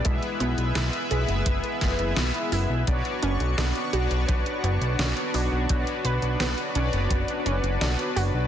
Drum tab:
HH |xxxxxxxxxxxxxxo-|xxxxxxxxxxxxxxo-|xxxxxxxxxxxxxxo-|
SD |----o-----o-o---|----o-------o---|----o-------o---|
BD |o-------o-o-----|o-------o-------|o-------o-------|